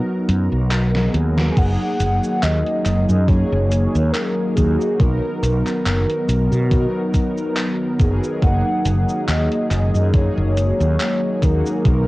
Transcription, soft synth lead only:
0, 0, Header, 1, 2, 480
1, 0, Start_track
1, 0, Key_signature, 6, "major"
1, 0, Tempo, 857143
1, 880, Time_signature, 4, 2, 24, 8
1, 6762, End_track
2, 0, Start_track
2, 0, Title_t, "Soft synth lead"
2, 0, Program_c, 0, 80
2, 0, Note_on_c, 0, 66, 89
2, 402, Note_off_c, 0, 66, 0
2, 846, Note_on_c, 0, 80, 83
2, 881, Note_on_c, 0, 78, 117
2, 890, Note_off_c, 0, 80, 0
2, 1358, Note_on_c, 0, 75, 108
2, 1366, Note_off_c, 0, 78, 0
2, 1594, Note_off_c, 0, 75, 0
2, 1598, Note_on_c, 0, 75, 104
2, 1836, Note_on_c, 0, 73, 105
2, 1844, Note_off_c, 0, 75, 0
2, 2066, Note_off_c, 0, 73, 0
2, 2070, Note_on_c, 0, 73, 100
2, 2306, Note_on_c, 0, 70, 96
2, 2315, Note_off_c, 0, 73, 0
2, 2550, Note_on_c, 0, 68, 88
2, 2558, Note_off_c, 0, 70, 0
2, 2794, Note_on_c, 0, 70, 92
2, 2803, Note_off_c, 0, 68, 0
2, 4237, Note_off_c, 0, 70, 0
2, 4719, Note_on_c, 0, 78, 114
2, 5177, Note_off_c, 0, 78, 0
2, 5201, Note_on_c, 0, 75, 110
2, 5424, Note_off_c, 0, 75, 0
2, 5436, Note_on_c, 0, 75, 98
2, 5661, Note_off_c, 0, 75, 0
2, 5679, Note_on_c, 0, 73, 108
2, 6407, Note_on_c, 0, 70, 89
2, 6416, Note_off_c, 0, 73, 0
2, 6762, Note_off_c, 0, 70, 0
2, 6762, End_track
0, 0, End_of_file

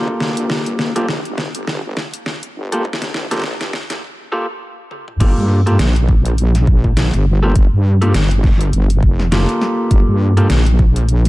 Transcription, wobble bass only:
0, 0, Header, 1, 2, 480
1, 0, Start_track
1, 0, Key_signature, -2, "minor"
1, 0, Tempo, 588235
1, 408, Time_signature, 4, 2, 24, 8
1, 9212, End_track
2, 0, Start_track
2, 0, Title_t, "Wobble bass"
2, 0, Program_c, 0, 39
2, 0, Note_on_c, 0, 38, 94
2, 150, Note_off_c, 0, 38, 0
2, 167, Note_on_c, 0, 38, 99
2, 391, Note_off_c, 0, 38, 0
2, 405, Note_on_c, 0, 31, 94
2, 870, Note_off_c, 0, 31, 0
2, 887, Note_on_c, 0, 34, 98
2, 1003, Note_off_c, 0, 34, 0
2, 1025, Note_on_c, 0, 31, 99
2, 1243, Note_off_c, 0, 31, 0
2, 1265, Note_on_c, 0, 31, 98
2, 1591, Note_off_c, 0, 31, 0
2, 2087, Note_on_c, 0, 31, 97
2, 2551, Note_off_c, 0, 31, 0
2, 2568, Note_on_c, 0, 34, 98
2, 2791, Note_off_c, 0, 34, 0
2, 2807, Note_on_c, 0, 34, 100
2, 2923, Note_off_c, 0, 34, 0
2, 2945, Note_on_c, 0, 43, 95
2, 3031, Note_off_c, 0, 43, 0
2, 4246, Note_on_c, 0, 31, 96
2, 4362, Note_off_c, 0, 31, 0
2, 4386, Note_on_c, 0, 43, 99
2, 4712, Note_off_c, 0, 43, 0
2, 4727, Note_on_c, 0, 34, 101
2, 5431, Note_off_c, 0, 34, 0
2, 5445, Note_on_c, 0, 34, 100
2, 5802, Note_off_c, 0, 34, 0
2, 5826, Note_on_c, 0, 31, 101
2, 6152, Note_off_c, 0, 31, 0
2, 6166, Note_on_c, 0, 31, 98
2, 6282, Note_off_c, 0, 31, 0
2, 6307, Note_on_c, 0, 43, 99
2, 6632, Note_off_c, 0, 43, 0
2, 6650, Note_on_c, 0, 31, 99
2, 7112, Note_off_c, 0, 31, 0
2, 7127, Note_on_c, 0, 31, 97
2, 7351, Note_off_c, 0, 31, 0
2, 7366, Note_on_c, 0, 29, 97
2, 7722, Note_off_c, 0, 29, 0
2, 8086, Note_on_c, 0, 31, 97
2, 8202, Note_off_c, 0, 31, 0
2, 8224, Note_on_c, 0, 43, 95
2, 8551, Note_off_c, 0, 43, 0
2, 8568, Note_on_c, 0, 34, 102
2, 9212, Note_off_c, 0, 34, 0
2, 9212, End_track
0, 0, End_of_file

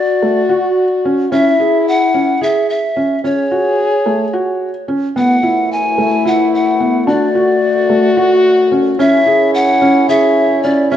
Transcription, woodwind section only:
0, 0, Header, 1, 2, 480
1, 0, Start_track
1, 0, Tempo, 547945
1, 1162, Time_signature, 7, 3, 24, 8
1, 9607, End_track
2, 0, Start_track
2, 0, Title_t, "Woodwind section"
2, 0, Program_c, 0, 71
2, 4526, Note_on_c, 0, 52, 57
2, 4527, Note_on_c, 0, 47, 55
2, 4528, Note_on_c, 0, 42, 61
2, 4530, Note_on_c, 0, 57, 66
2, 6186, Note_off_c, 0, 42, 0
2, 6186, Note_off_c, 0, 47, 0
2, 6186, Note_off_c, 0, 52, 0
2, 6203, Note_on_c, 0, 42, 66
2, 6203, Note_on_c, 0, 50, 66
2, 7852, Note_off_c, 0, 57, 0
2, 7865, Note_off_c, 0, 50, 0
2, 7875, Note_on_c, 0, 64, 77
2, 7877, Note_on_c, 0, 49, 67
2, 9607, Note_off_c, 0, 42, 0
2, 9607, Note_off_c, 0, 49, 0
2, 9607, Note_off_c, 0, 64, 0
2, 9607, End_track
0, 0, End_of_file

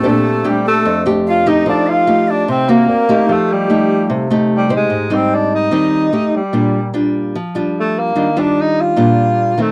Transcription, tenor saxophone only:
0, 0, Header, 1, 2, 480
1, 0, Start_track
1, 0, Tempo, 405680
1, 46, Time_signature, 4, 2, 24, 8
1, 11496, End_track
2, 0, Start_track
2, 0, Title_t, "Tenor saxophone"
2, 0, Program_c, 0, 66
2, 0, Note_on_c, 0, 57, 88
2, 580, Note_on_c, 0, 55, 82
2, 598, Note_off_c, 0, 57, 0
2, 792, Note_off_c, 0, 55, 0
2, 800, Note_on_c, 0, 57, 88
2, 1230, Note_off_c, 0, 57, 0
2, 1525, Note_on_c, 0, 65, 95
2, 1756, Note_on_c, 0, 63, 86
2, 1774, Note_off_c, 0, 65, 0
2, 1980, Note_off_c, 0, 63, 0
2, 1997, Note_on_c, 0, 62, 90
2, 2243, Note_on_c, 0, 65, 97
2, 2261, Note_off_c, 0, 62, 0
2, 2727, Note_on_c, 0, 62, 84
2, 2745, Note_off_c, 0, 65, 0
2, 2945, Note_off_c, 0, 62, 0
2, 2965, Note_on_c, 0, 60, 86
2, 3194, Note_on_c, 0, 58, 100
2, 3212, Note_off_c, 0, 60, 0
2, 3930, Note_on_c, 0, 57, 85
2, 3948, Note_off_c, 0, 58, 0
2, 4167, Note_on_c, 0, 55, 84
2, 4185, Note_off_c, 0, 57, 0
2, 5105, Note_off_c, 0, 55, 0
2, 5405, Note_on_c, 0, 55, 81
2, 5590, Note_off_c, 0, 55, 0
2, 5635, Note_on_c, 0, 56, 78
2, 6088, Note_on_c, 0, 60, 82
2, 6106, Note_off_c, 0, 56, 0
2, 6326, Note_on_c, 0, 62, 83
2, 6343, Note_off_c, 0, 60, 0
2, 6545, Note_off_c, 0, 62, 0
2, 6564, Note_on_c, 0, 63, 91
2, 7519, Note_on_c, 0, 55, 74
2, 7537, Note_off_c, 0, 63, 0
2, 8223, Note_off_c, 0, 55, 0
2, 9226, Note_on_c, 0, 57, 77
2, 9452, Note_on_c, 0, 58, 81
2, 9469, Note_off_c, 0, 57, 0
2, 9932, Note_on_c, 0, 62, 86
2, 9950, Note_off_c, 0, 58, 0
2, 10183, Note_on_c, 0, 63, 88
2, 10200, Note_off_c, 0, 62, 0
2, 10421, Note_on_c, 0, 65, 88
2, 10438, Note_off_c, 0, 63, 0
2, 11374, Note_on_c, 0, 57, 69
2, 11392, Note_off_c, 0, 65, 0
2, 11496, Note_off_c, 0, 57, 0
2, 11496, End_track
0, 0, End_of_file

